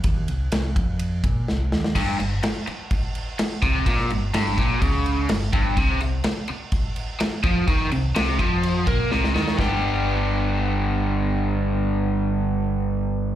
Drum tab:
CC |----------------|x-x-x-x-x-x-x-x-|x-x-x-x-x-x-x-x-|x-x-x-x-x-x-x-x-|
RD |x-x-x-x-x-x-----|----------------|----------------|----------------|
SD |----o-------o-oo|-o--o-------o-o-|-o--o-------o---|----o-------o---|
BD |o-----o---o-----|o-------o-----o-|o-----o-o-----o-|o-------o-----o-|

CC |x-x-x-x-x-x-----|----------------|----------------|
RD |----------------|----------------|----------------|
SD |----o-------oooo|o---------------|----------------|
BD |o-----o---o-----|o---------------|----------------|